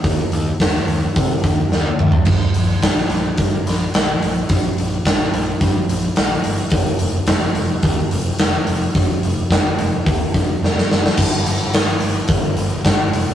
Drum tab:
CC |----------------|x---------------|----------------|----------------|
HH |o-o-o-o-o-o-----|--o-o-o-o-o-o-o-|o-o-o-o-o-o-o-o-|o-o-o-o-o-o-o-o-|
SD |----oo------o---|----ooo---o-o---|----oo------o---|----o-------o---|
T1 |-------------o--|----------------|----------------|----------------|
T2 |--------------o-|----------------|----------------|----------------|
FT |---------------o|----------------|----------------|----------------|
BD |o---o---o-o-----|o---o---o-------|o---o---o-------|o---o---o-------|

CC |----------------|x---------------|
HH |o-o-o-o-o-o-----|--o-o-o-o-o-o-o-|
SD |----o-------oooo|----o-------o---|
T1 |----------------|----------------|
T2 |----------------|----------------|
FT |----------------|----------------|
BD |o---o---o-o-----|o-------o---o---|